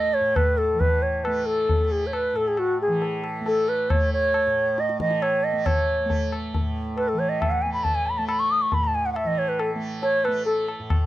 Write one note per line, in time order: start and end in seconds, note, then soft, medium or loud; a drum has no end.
0.00 0.20 A2 medium
0.00 0.73 E3 medium
0.00 1.27 A3 medium
0.00 0.16 D#5 loud
0.14 0.37 C#5 loud
0.20 2.33 A2 medium
0.36 0.59 B4 loud
0.36 tabla na medium
0.36 tabla ge medium
0.58 0.82 A4 loud
0.73 2.87 E3 medium
0.80 1.04 B4 loud
0.80 tabla tin medium
0.80 tabla ge medium
1.02 1.26 C#5 medium
1.24 1.80 A3 medium
1.24 1.47 B4 medium
1.24 tabla na medium
1.46 1.93 A4 loud
1.69 tabla tin medium
1.69 tabla ge medium
1.80 3.41 A3 medium
1.92 2.08 G#4 medium
2.07 2.15 C#5 medium
2.13 2.38 B4 loud
2.13 tabla na medium
2.33 4.46 A2 medium
2.33 2.49 A4 medium
2.33 tabla na medium
2.48 2.60 G#4 medium
2.57 2.80 F#4 medium
2.57 tabla na medium
2.82 3.22 G#4 medium
2.87 4.99 E3 medium
3.02 tabla tin medium
3.24 tabla na medium
3.41 3.94 A3 medium
3.46 3.70 A4 loud
3.46 tabla tin medium
3.68 3.92 B4 medium
3.68 tabla na medium
3.90 5.53 A3 medium
3.90 4.12 C#5 loud
3.90 tabla na medium
3.90 tabla ge medium
4.13 4.81 C#5 loud
4.34 tabla na medium
4.46 6.59 A2 medium
4.78 5.00 D#5 loud
4.78 tabla te medium
4.89 tabla te medium
5.00 7.12 E3 medium
5.00 5.24 D#5 medium
5.00 tabla ke medium
5.11 tabla te medium
5.22 5.45 C#5 loud
5.22 tabla na medium
5.44 5.67 D#5 loud
5.53 6.05 A3 medium
5.66 6.32 C#5 loud
5.66 tabla na loud
5.66 tabla ge loud
6.05 7.66 A3 medium
6.10 tabla tin medium
6.10 tabla ge medium
6.32 tabla na medium
6.54 tabla tin medium
6.54 tabla ge medium
6.59 8.71 A2 medium
6.97 7.10 B4 medium
6.97 tabla na medium
7.08 7.20 A4 medium
7.13 9.24 E3 medium
7.19 7.31 C#5 loud
7.29 7.42 D#5 medium
7.41 7.52 E5 loud
7.41 tabla na medium
7.41 tabla ge medium
7.51 7.63 F#5 loud
7.62 8.19 A3 medium
7.62 7.73 G#5 loud
7.74 7.85 B5 loud
7.84 7.96 A5 loud
7.84 tabla tin medium
7.84 tabla ge medium
7.95 8.08 G#5 loud
8.07 8.19 B5 medium
8.18 9.75 A3 medium
8.18 8.27 A5 medium
8.28 8.41 B5 loud
8.28 tabla na loud
8.40 8.53 C#6 loud
8.51 8.63 D#6 loud
8.62 8.76 C#6 loud
8.71 10.79 A2 medium
8.71 8.86 B5 loud
8.71 tabla tin medium
8.71 tabla ge medium
8.84 8.96 A5 loud
8.95 9.07 G#5 loud
9.06 9.12 F#5 medium
9.12 9.29 E5 loud
9.12 9.17 F#5 medium
9.12 tabla na medium
9.24 11.06 E3 medium
9.24 9.40 D#5 loud
9.38 9.50 C#5 medium
9.49 9.61 B4 medium
9.59 9.70 A4 medium
9.59 tabla na medium
9.75 10.28 A3 medium
10.02 10.26 C#5 loud
10.02 tabla tin medium
10.24 11.06 A3 medium
10.24 10.45 B4 medium
10.24 tabla na medium
10.46 10.66 A4 medium
10.46 tabla tin medium
10.68 tabla na medium
10.79 11.06 A2 medium
10.90 tabla na medium
10.90 tabla ge medium